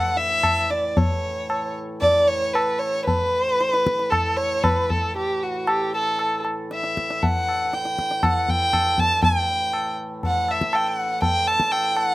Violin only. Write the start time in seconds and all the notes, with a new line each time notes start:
Already playing: F#5
0.17 E5
0.70 D5
0.97 C#5
2.01 D5
2.28 C#5
2.54 B4
2.79 C#5
3.05 B4
4.10 A4
4.37 C#5
4.63 B4
4.89 A4
5.16 G4
5.43 F#4
5.68 G4
5.94 A4
6.73 E5
7.22 F#5
7.74 G5
8.24 F#5
8.49 G5
8.99 A5
9.24 G5
10.26 F#5
10.51 E5
10.75 G5
10.87 F#5
11.23 G5
11.47 A5
11.72 G5
11.96 F#5